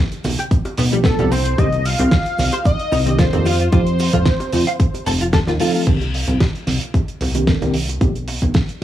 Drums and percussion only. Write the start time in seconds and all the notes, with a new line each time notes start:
0.12 closed hi-hat, cabasa
0.24 open hi-hat, high bongo, high conga, cabasa
0.39 closed hi-hat, cabasa
0.51 kick, closed hi-hat, cabasa
0.65 closed hi-hat, high bongo, cabasa
0.77 open hi-hat, low conga, cabasa
0.92 closed hi-hat, cabasa
1.04 kick, snare, closed hi-hat, cabasa
1.19 closed hi-hat, high bongo, low conga, cabasa
1.32 open hi-hat, high conga, cabasa
1.45 closed hi-hat, cabasa
1.58 kick, closed hi-hat, high bongo, cabasa
1.72 closed hi-hat, high conga, cabasa
1.85 open hi-hat, cabasa
1.98 closed hi-hat, low conga, cabasa
2.11 kick, snare, closed hi-hat, high bongo, cabasa
2.26 closed hi-hat, cabasa
2.38 snare, open hi-hat, high conga, cabasa
2.52 closed hi-hat, high bongo, cabasa
2.65 kick, closed hi-hat, cabasa
2.79 closed hi-hat, cabasa
2.92 open hi-hat, low conga, cabasa
3.06 closed hi-hat, high bongo, cabasa
3.19 kick, snare, closed hi-hat, cabasa
3.33 closed hi-hat, low conga, cabasa
3.45 open hi-hat, high bongo, cabasa
3.60 closed hi-hat, cabasa
3.72 kick, closed hi-hat, cabasa
3.86 closed hi-hat, cabasa
3.99 open hi-hat, high bongo, cabasa
4.13 kick, closed hi-hat, low conga, cabasa
4.26 kick, snare, closed hi-hat, cabasa
4.40 closed hi-hat, high bongo, cabasa
4.53 open hi-hat, high conga, cabasa
4.67 closed hi-hat, cabasa
4.80 kick, closed hi-hat, cabasa
4.94 closed hi-hat, high bongo, cabasa
5.06 open hi-hat, low conga, cabasa
5.20 closed hi-hat, cabasa
5.33 kick, snare, closed hi-hat, high bongo, cabasa
5.47 snare, closed hi-hat, low conga, cabasa
5.60 open hi-hat, high conga, cabasa
5.74 open hi-hat, cabasa
5.87 kick, closed hi-hat, crash
6.01 closed hi-hat, high bongo, high conga
6.14 open hi-hat
6.27 closed hi-hat, low conga
6.40 kick, snare, closed hi-hat, high bongo
6.55 closed hi-hat
6.67 snare, open hi-hat, high conga
6.81 closed hi-hat
6.94 kick, closed hi-hat, high bongo
7.08 closed hi-hat
7.21 open hi-hat, low conga
7.35 closed hi-hat, high bongo
7.47 kick, snare, closed hi-hat
7.62 closed hi-hat, low conga
7.74 open hi-hat
7.89 closed hi-hat, high bongo
8.01 kick, closed hi-hat
8.15 closed hi-hat
8.28 open hi-hat, high bongo
8.42 kick, closed hi-hat, low conga
8.54 kick, snare, closed hi-hat
8.69 closed hi-hat